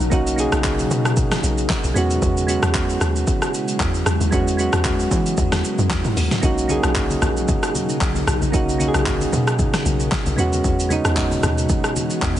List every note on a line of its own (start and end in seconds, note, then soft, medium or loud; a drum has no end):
0.00 0.10 A#1 medium
0.00 4.02 B2 medium
0.00 6.39 C#3 medium
0.00 1.92 F#3 medium
0.00 0.10 A#3 medium
0.00 0.11 C#4 medium
0.00 0.12 D#4 medium
0.00 1.92 D#4 loud
0.00 0.14 F#4 loud
0.00 1.92 A#4 medium
0.00 shaker medium
0.10 0.47 B1 loud
0.10 0.32 A#3 medium
0.10 0.33 C#4 medium
0.10 0.34 D#4 medium
0.10 0.34 F#4 medium
0.10 kick loud
0.10 shaker medium
0.27 shaker medium
0.36 1.22 A#3 medium
0.36 1.22 C#4 medium
0.36 1.23 D#4 medium
0.36 1.24 G#4 loud
0.36 shaker medium
0.52 0.86 B1 loud
0.52 cross-stick loud
0.52 shaker medium
0.64 kick loud
0.64 clap loud
0.64 shaker medium
0.79 shaker medium
0.91 1.37 B2 loud
0.91 shaker medium
1.05 cross-stick medium
1.05 shaker medium
1.17 kick loud
1.17 shaker medium
1.32 cross-stick medium
1.32 snare medium
1.32 shaker medium
1.43 1.66 B1 loud
1.43 shaker medium
1.58 shaker medium
1.70 kick loud
1.70 snare medium
1.70 clap loud
1.70 shaker medium
1.84 1.94 B1 medium
1.84 shaker medium
1.94 2.19 E2 loud
1.94 10.34 F#3 medium
1.94 2.38 G#3 medium
1.94 6.39 G#3 medium
1.94 2.39 B3 medium
1.94 2.39 C#4 medium
1.94 6.39 E4 medium
1.94 2.40 F#4 loud
1.94 shaker medium
2.11 shaker medium
2.22 2.58 E2 loud
2.22 kick loud
2.22 shaker medium
2.37 shaker medium
2.47 3.32 G#3 medium
2.47 3.33 B3 medium
2.47 3.33 C#4 medium
2.47 3.34 F#4 loud
2.47 shaker medium
2.63 2.96 E2 loud
2.63 cross-stick loud
2.63 shaker medium
2.74 kick loud
2.74 clap loud
2.74 shaker medium
2.90 shaker medium
3.01 3.24 D#2 loud
3.01 cross-stick medium
3.01 shaker medium
3.16 shaker medium
3.27 kick loud
3.27 shaker medium
3.42 cross-stick medium
3.42 shaker medium
3.54 shaker medium
3.68 shaker medium
3.80 4.03 E2 loud
3.80 kick loud
3.80 clap medium
3.80 shaker medium
3.94 shaker medium
4.06 4.19 E2 loud
4.06 10.34 A#4 medium
4.06 cross-stick loud
4.06 shaker medium
4.21 4.31 D#2 loud
4.21 shaker medium
4.31 4.68 E2 loud
4.31 4.53 G#3 medium
4.31 4.54 B3 medium
4.31 4.54 C#4 medium
4.31 4.55 F#4 medium
4.31 kick loud
4.31 shaker medium
4.48 shaker medium
4.57 5.43 G#3 medium
4.57 5.43 B3 medium
4.57 5.44 C#4 medium
4.57 5.45 F#4 loud
4.57 shaker medium
4.73 5.07 E2 loud
4.73 cross-stick loud
4.73 shaker medium
4.84 kick loud
4.84 clap medium
4.84 shaker medium
5.00 shaker medium
5.11 5.34 E3 loud
5.11 kick medium
5.11 shaker medium
5.26 shaker medium
5.37 5.50 E2 medium
5.37 kick loud
5.37 shaker medium
5.52 5.62 E2 medium
5.52 cross-stick medium
5.52 snare medium
5.52 shaker medium
5.64 shaker medium
5.78 5.89 F#2 medium
5.78 shaker medium
5.90 6.03 E2 medium
5.90 kick loud
5.90 snare medium
5.90 clap loud
5.90 shaker medium
6.05 mid tom loud
6.05 shaker medium
6.17 6.29 D#2 loud
6.17 open hi-hat medium
6.17 shaker medium
6.31 snare medium
6.31 mid tom medium
6.31 shaker medium
6.41 6.79 B1 loud
6.41 12.40 B2 medium
6.41 10.34 C#3 medium
6.41 6.64 A#3 medium
6.41 6.64 C#4 medium
6.41 10.34 D#4 loud
6.41 6.65 D#4 medium
6.41 6.66 F#4 medium
6.41 kick loud
6.41 shaker medium
6.58 shaker medium
6.68 7.53 A#3 medium
6.68 7.54 C#4 medium
6.68 7.54 D#4 medium
6.68 7.55 G#4 loud
6.68 high conga medium
6.68 shaker medium
6.83 7.17 B1 loud
6.83 cross-stick loud
6.83 shaker medium
6.95 kick loud
6.95 clap medium
6.95 low conga medium
6.95 shaker medium
7.10 high conga medium
7.10 shaker medium
7.22 7.45 A#1 medium
7.22 cross-stick medium
7.22 high conga medium
7.22 low conga medium
7.22 shaker medium
7.37 shaker medium
7.48 kick loud
7.48 low conga medium
7.48 shaker medium
7.63 cross-stick medium
7.63 shaker medium
7.75 high conga medium
7.75 shaker medium
7.89 shaker medium
8.01 8.24 B1 medium
8.01 kick loud
8.01 clap loud
8.01 shaker medium
8.15 high conga medium
8.15 shaker medium
8.27 8.40 B1 loud
8.27 cross-stick loud
8.27 low conga medium
8.27 shaker medium
8.42 8.52 A#1 loud
8.42 high conga medium
8.42 shaker medium
8.52 8.89 B1 loud
8.52 8.74 A#3 medium
8.52 8.75 C#4 medium
8.52 8.76 D#4 medium
8.52 8.76 F#4 medium
8.52 kick loud
8.52 shaker medium
8.69 shaker medium
8.78 9.64 A#3 medium
8.78 9.65 C#4 medium
8.78 9.65 D#4 medium
8.78 8.88 F#4 medium
8.78 high conga medium
8.78 shaker medium
8.88 9.69 G#4 loud
8.94 9.28 B1 medium
8.94 cross-stick medium
8.94 shaker medium
9.06 kick loud
9.06 clap loud
9.06 low conga medium
9.06 shaker medium
9.21 high conga medium
9.21 shaker medium
9.33 9.79 B2 loud
9.33 high conga medium
9.33 low conga medium
9.33 shaker medium
9.47 cross-stick medium
9.47 shaker medium
9.59 kick loud
9.59 low conga medium
9.59 shaker medium
9.74 cross-stick medium
9.74 snare medium
9.74 shaker medium
9.85 10.08 B1 medium
9.85 high conga medium
9.85 shaker medium
10.00 shaker medium
10.12 kick loud
10.12 snare medium
10.12 clap medium
10.12 shaker medium
10.26 10.36 B1 medium
10.26 high conga medium
10.26 shaker medium
10.36 10.61 E2 loud
10.36 12.40 E3 medium
10.36 10.80 G#3 medium
10.36 12.40 G#3 medium
10.36 10.81 B3 medium
10.36 12.40 C#4 medium
10.36 10.81 C#4 medium
10.36 12.40 F#4 medium
10.36 10.82 F#4 loud
10.36 low conga medium
10.36 shaker medium
10.53 high conga medium
10.53 shaker medium
10.64 11.00 E2 loud
10.64 kick loud
10.64 shaker medium
10.80 shaker medium
10.89 11.74 G#3 medium
10.89 11.75 B3 medium
10.89 11.76 C#4 medium
10.89 11.76 D#4 loud
10.89 high conga medium
10.89 shaker medium
11.05 11.38 E2 loud
11.05 cross-stick loud
11.05 shaker medium
11.16 kick medium
11.16 clap loud
11.16 low conga medium
11.16 shaker medium
11.31 high conga medium
11.31 shaker medium
11.43 11.66 D#2 loud
11.43 cross-stick medium
11.43 high conga medium
11.43 low conga medium
11.43 shaker medium
11.58 shaker medium
11.69 kick loud
11.69 low conga medium
11.69 shaker medium
11.84 cross-stick medium
11.84 shaker medium
11.96 high conga medium
11.96 shaker medium
12.10 shaker medium
12.22 12.40 E2 loud
12.22 kick loud
12.22 clap loud
12.22 shaker medium
12.36 high conga medium
12.36 shaker medium